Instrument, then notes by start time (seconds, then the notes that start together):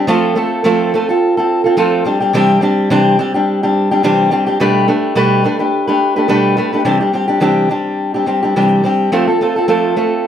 steel-string acoustic guitar
0.07 F3 A3 C4 F4 A4
0.35 A3 C4 F4 A4
0.64 F3 A3 C4 F4 A4
0.94 A3 C4 F4 A4
1.09 C4 F4 A4
1.37 C4 F4 A4
1.64 C4 F4 A4
1.77 F3 A3 C4 F4 A4
2.04 G3 C4 D4 G4
2.20 G3 C4 D4 G4
2.33 C3 E3 G3 C4 D4 G4
2.61 G3 C4 D4 G4
2.90 C3 E3 G3 C4 D4 G4
3.19 G3 C4 D4 G4
3.34 G3 C4 D4 G4
3.63 G3 C4 D4 G4
3.91 G3 C4 D4 G4
4.03 C3 E3 G3 C4 D4 G4
4.31 G3 C4 D4 G4
4.47 G3 C4 D4 G4
4.60 B2 G3 A3 D4 G4 B4
4.88 A3 D4 G4 B4
5.15 B2 G3 A3 D4 G4 B4
5.44 A3 D4 G4 B4
5.59 A3 D4 G4 B4
5.87 A3 D4 G4 B4
6.16 A3 D4 G4 B4
6.28 B2 G3 A3 D4 G4 B4
6.57 A3 D4 G4 B4
6.72 A3 D4 G4 B4
6.85 C3 E3 G3 C4 D4 G4
7.00 G3 C4 D4 G4
7.13 G3 C4 D4 G4
7.28 G3 C4 D4 G4
7.40 C3 E3 G3 C4 D4 G4
7.69 G3 C4 D4 G4
8.14 G3 C4 D4 G4
8.26 G3 C4 D4 G4
8.43 G3 C4 D4 G4
8.56 C3 E3 G3 C4 D4 G4
8.84 G3 C4 D4 G4
9.12 F3 A3 C4 F4 A4
9.28 C4 F4 A4
9.41 A3 C4 F4 A4
9.56 C4 F4 A4
9.68 F3 A3 C4 F4 A4
9.96 A3 C4 F4 A4